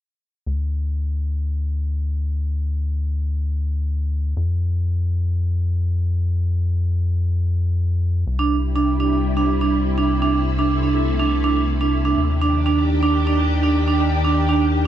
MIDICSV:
0, 0, Header, 1, 4, 480
1, 0, Start_track
1, 0, Tempo, 487805
1, 458, Time_signature, 4, 2, 24, 8
1, 14634, End_track
2, 0, Start_track
2, 0, Title_t, "Vibraphone"
2, 0, Program_c, 0, 11
2, 8257, Note_on_c, 0, 62, 69
2, 8298, Note_off_c, 0, 62, 0
2, 8616, Note_on_c, 0, 62, 79
2, 8685, Note_off_c, 0, 62, 0
2, 8857, Note_on_c, 0, 62, 72
2, 8898, Note_off_c, 0, 62, 0
2, 9217, Note_on_c, 0, 62, 73
2, 9286, Note_off_c, 0, 62, 0
2, 9458, Note_on_c, 0, 62, 70
2, 9498, Note_off_c, 0, 62, 0
2, 9817, Note_on_c, 0, 62, 70
2, 9886, Note_off_c, 0, 62, 0
2, 10057, Note_on_c, 0, 62, 78
2, 10098, Note_off_c, 0, 62, 0
2, 10417, Note_on_c, 0, 62, 72
2, 10486, Note_off_c, 0, 62, 0
2, 10657, Note_on_c, 0, 62, 67
2, 10698, Note_off_c, 0, 62, 0
2, 11017, Note_on_c, 0, 62, 74
2, 11086, Note_off_c, 0, 62, 0
2, 11257, Note_on_c, 0, 62, 76
2, 11298, Note_off_c, 0, 62, 0
2, 11617, Note_on_c, 0, 62, 72
2, 11686, Note_off_c, 0, 62, 0
2, 11857, Note_on_c, 0, 62, 71
2, 11898, Note_off_c, 0, 62, 0
2, 12217, Note_on_c, 0, 62, 69
2, 12285, Note_off_c, 0, 62, 0
2, 12456, Note_on_c, 0, 62, 81
2, 12498, Note_off_c, 0, 62, 0
2, 12817, Note_on_c, 0, 62, 75
2, 12885, Note_off_c, 0, 62, 0
2, 13056, Note_on_c, 0, 62, 74
2, 13098, Note_off_c, 0, 62, 0
2, 13416, Note_on_c, 0, 62, 78
2, 13485, Note_off_c, 0, 62, 0
2, 13656, Note_on_c, 0, 62, 75
2, 13698, Note_off_c, 0, 62, 0
2, 14017, Note_on_c, 0, 62, 69
2, 14085, Note_off_c, 0, 62, 0
2, 14257, Note_on_c, 0, 62, 74
2, 14298, Note_off_c, 0, 62, 0
2, 14634, End_track
3, 0, Start_track
3, 0, Title_t, "String machine"
3, 0, Program_c, 1, 50
3, 8137, Note_on_c, 1, 55, 70
3, 8138, Note_on_c, 1, 48, 80
3, 8138, Note_on_c, 1, 64, 86
3, 10038, Note_off_c, 1, 55, 0
3, 10058, Note_on_c, 1, 57, 77
3, 11939, Note_off_c, 1, 48, 0
3, 11939, Note_off_c, 1, 64, 0
3, 11958, Note_off_c, 1, 57, 0
3, 11976, Note_on_c, 1, 62, 73
3, 11977, Note_on_c, 1, 51, 79
3, 11977, Note_on_c, 1, 67, 89
3, 14634, Note_off_c, 1, 51, 0
3, 14634, Note_off_c, 1, 62, 0
3, 14634, Note_off_c, 1, 67, 0
3, 14634, End_track
4, 0, Start_track
4, 0, Title_t, "Analog synth bass"
4, 0, Program_c, 2, 38
4, 457, Note_on_c, 2, 38, 83
4, 4273, Note_off_c, 2, 38, 0
4, 4296, Note_on_c, 2, 41, 84
4, 8113, Note_off_c, 2, 41, 0
4, 8136, Note_on_c, 2, 36, 82
4, 11953, Note_off_c, 2, 36, 0
4, 11977, Note_on_c, 2, 39, 82
4, 14634, Note_off_c, 2, 39, 0
4, 14634, End_track
0, 0, End_of_file